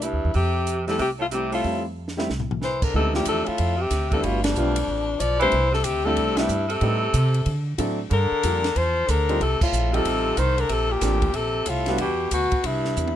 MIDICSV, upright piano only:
0, 0, Header, 1, 2, 480
1, 0, Start_track
1, 0, Key_signature, -1, "minor"
1, 0, Tempo, 323450
1, 519, Time_signature, 4, 2, 24, 8
1, 19528, End_track
2, 0, Start_track
2, 0, Title_t, "Upright piano"
2, 0, Program_c, 0, 0
2, 1302, Note_on_c, 0, 55, 71
2, 1312, Note_on_c, 0, 57, 67
2, 1323, Note_on_c, 0, 60, 64
2, 1331, Note_on_c, 0, 64, 81
2, 1461, Note_off_c, 0, 55, 0
2, 1466, Note_off_c, 0, 57, 0
2, 1472, Note_off_c, 0, 60, 0
2, 1476, Note_off_c, 0, 64, 0
2, 1958, Note_on_c, 0, 55, 61
2, 1969, Note_on_c, 0, 57, 51
2, 1981, Note_on_c, 0, 60, 53
2, 1988, Note_on_c, 0, 64, 65
2, 2424, Note_off_c, 0, 55, 0
2, 2429, Note_off_c, 0, 57, 0
2, 2439, Note_off_c, 0, 60, 0
2, 2446, Note_on_c, 0, 55, 49
2, 2451, Note_on_c, 0, 57, 49
2, 2453, Note_off_c, 0, 64, 0
2, 2461, Note_on_c, 0, 60, 45
2, 2475, Note_on_c, 0, 64, 53
2, 2719, Note_off_c, 0, 55, 0
2, 2722, Note_off_c, 0, 57, 0
2, 2726, Note_off_c, 0, 60, 0
2, 2733, Note_off_c, 0, 64, 0
2, 3221, Note_on_c, 0, 55, 67
2, 3230, Note_on_c, 0, 57, 64
2, 3240, Note_on_c, 0, 60, 62
2, 3248, Note_on_c, 0, 64, 80
2, 3382, Note_off_c, 0, 55, 0
2, 3387, Note_off_c, 0, 57, 0
2, 3391, Note_off_c, 0, 60, 0
2, 3396, Note_off_c, 0, 64, 0
2, 4361, Note_on_c, 0, 52, 62
2, 4366, Note_on_c, 0, 56, 50
2, 4376, Note_on_c, 0, 59, 54
2, 4391, Note_on_c, 0, 61, 56
2, 4391, Note_on_c, 0, 63, 66
2, 4637, Note_off_c, 0, 52, 0
2, 4639, Note_off_c, 0, 56, 0
2, 4644, Note_off_c, 0, 59, 0
2, 4652, Note_off_c, 0, 61, 0
2, 4652, Note_off_c, 0, 63, 0
2, 4661, Note_on_c, 0, 53, 65
2, 4666, Note_on_c, 0, 57, 58
2, 4669, Note_on_c, 0, 60, 56
2, 4683, Note_on_c, 0, 62, 59
2, 4688, Note_on_c, 0, 64, 75
2, 5084, Note_off_c, 0, 53, 0
2, 5086, Note_off_c, 0, 57, 0
2, 5088, Note_off_c, 0, 60, 0
2, 5095, Note_off_c, 0, 62, 0
2, 5097, Note_off_c, 0, 64, 0
2, 6116, Note_on_c, 0, 55, 58
2, 6128, Note_on_c, 0, 57, 55
2, 6135, Note_on_c, 0, 59, 59
2, 6139, Note_on_c, 0, 62, 58
2, 6146, Note_on_c, 0, 64, 68
2, 6732, Note_off_c, 0, 55, 0
2, 6738, Note_off_c, 0, 57, 0
2, 6741, Note_off_c, 0, 59, 0
2, 6743, Note_off_c, 0, 62, 0
2, 6747, Note_off_c, 0, 64, 0
2, 6763, Note_on_c, 0, 55, 66
2, 6778, Note_on_c, 0, 57, 54
2, 6789, Note_on_c, 0, 59, 59
2, 6795, Note_on_c, 0, 62, 61
2, 6796, Note_on_c, 0, 65, 78
2, 7038, Note_off_c, 0, 55, 0
2, 7045, Note_off_c, 0, 57, 0
2, 7050, Note_off_c, 0, 59, 0
2, 7053, Note_off_c, 0, 62, 0
2, 7054, Note_off_c, 0, 65, 0
2, 8040, Note_on_c, 0, 55, 79
2, 8046, Note_on_c, 0, 57, 64
2, 8052, Note_on_c, 0, 60, 63
2, 8055, Note_on_c, 0, 62, 68
2, 8062, Note_on_c, 0, 64, 86
2, 8191, Note_off_c, 0, 55, 0
2, 8194, Note_off_c, 0, 57, 0
2, 8197, Note_off_c, 0, 60, 0
2, 8198, Note_off_c, 0, 62, 0
2, 8202, Note_off_c, 0, 64, 0
2, 8979, Note_on_c, 0, 55, 81
2, 8987, Note_on_c, 0, 57, 74
2, 8995, Note_on_c, 0, 60, 68
2, 9001, Note_on_c, 0, 62, 71
2, 9010, Note_on_c, 0, 64, 89
2, 9432, Note_off_c, 0, 55, 0
2, 9436, Note_off_c, 0, 57, 0
2, 9440, Note_off_c, 0, 60, 0
2, 9443, Note_off_c, 0, 62, 0
2, 9448, Note_off_c, 0, 64, 0
2, 9475, Note_on_c, 0, 55, 78
2, 9482, Note_on_c, 0, 57, 74
2, 9491, Note_on_c, 0, 60, 71
2, 9497, Note_on_c, 0, 62, 71
2, 9501, Note_on_c, 0, 64, 80
2, 9628, Note_off_c, 0, 55, 0
2, 9632, Note_off_c, 0, 57, 0
2, 9637, Note_off_c, 0, 60, 0
2, 9639, Note_off_c, 0, 62, 0
2, 9641, Note_off_c, 0, 64, 0
2, 10110, Note_on_c, 0, 55, 68
2, 10117, Note_on_c, 0, 59, 57
2, 10122, Note_on_c, 0, 60, 54
2, 10135, Note_on_c, 0, 63, 61
2, 10137, Note_on_c, 0, 69, 74
2, 10390, Note_off_c, 0, 55, 0
2, 10394, Note_off_c, 0, 59, 0
2, 10396, Note_off_c, 0, 60, 0
2, 10403, Note_off_c, 0, 63, 0
2, 10404, Note_off_c, 0, 69, 0
2, 11547, Note_on_c, 0, 54, 70
2, 11552, Note_on_c, 0, 60, 63
2, 11554, Note_on_c, 0, 62, 64
2, 11567, Note_on_c, 0, 64, 62
2, 11572, Note_on_c, 0, 69, 73
2, 11829, Note_off_c, 0, 54, 0
2, 11831, Note_off_c, 0, 60, 0
2, 11832, Note_off_c, 0, 62, 0
2, 11838, Note_off_c, 0, 64, 0
2, 11841, Note_off_c, 0, 69, 0
2, 12520, Note_on_c, 0, 55, 59
2, 12529, Note_on_c, 0, 58, 51
2, 12538, Note_on_c, 0, 62, 49
2, 12545, Note_on_c, 0, 65, 50
2, 12555, Note_on_c, 0, 69, 56
2, 12795, Note_off_c, 0, 55, 0
2, 12799, Note_off_c, 0, 58, 0
2, 12804, Note_off_c, 0, 62, 0
2, 12807, Note_off_c, 0, 65, 0
2, 12812, Note_off_c, 0, 69, 0
2, 13791, Note_on_c, 0, 55, 75
2, 13791, Note_on_c, 0, 60, 63
2, 13798, Note_on_c, 0, 63, 69
2, 13806, Note_on_c, 0, 65, 67
2, 13808, Note_on_c, 0, 72, 76
2, 13945, Note_off_c, 0, 60, 0
2, 13946, Note_off_c, 0, 55, 0
2, 13949, Note_off_c, 0, 63, 0
2, 13953, Note_off_c, 0, 65, 0
2, 13954, Note_off_c, 0, 72, 0
2, 14737, Note_on_c, 0, 55, 72
2, 14743, Note_on_c, 0, 60, 68
2, 14748, Note_on_c, 0, 63, 73
2, 14761, Note_on_c, 0, 65, 74
2, 14770, Note_on_c, 0, 69, 81
2, 15361, Note_off_c, 0, 55, 0
2, 15364, Note_off_c, 0, 60, 0
2, 15367, Note_off_c, 0, 63, 0
2, 15373, Note_off_c, 0, 65, 0
2, 15378, Note_off_c, 0, 69, 0
2, 16344, Note_on_c, 0, 58, 63
2, 16354, Note_on_c, 0, 60, 56
2, 16364, Note_on_c, 0, 62, 56
2, 16365, Note_on_c, 0, 65, 52
2, 16376, Note_on_c, 0, 69, 68
2, 16626, Note_off_c, 0, 58, 0
2, 16632, Note_off_c, 0, 60, 0
2, 16637, Note_off_c, 0, 62, 0
2, 16637, Note_off_c, 0, 65, 0
2, 16642, Note_off_c, 0, 69, 0
2, 17621, Note_on_c, 0, 59, 76
2, 17622, Note_on_c, 0, 55, 77
2, 17636, Note_on_c, 0, 62, 65
2, 17637, Note_on_c, 0, 64, 70
2, 17650, Note_on_c, 0, 66, 86
2, 17781, Note_off_c, 0, 55, 0
2, 17781, Note_off_c, 0, 59, 0
2, 17788, Note_off_c, 0, 62, 0
2, 17789, Note_off_c, 0, 64, 0
2, 17795, Note_off_c, 0, 66, 0
2, 19528, End_track
0, 0, End_of_file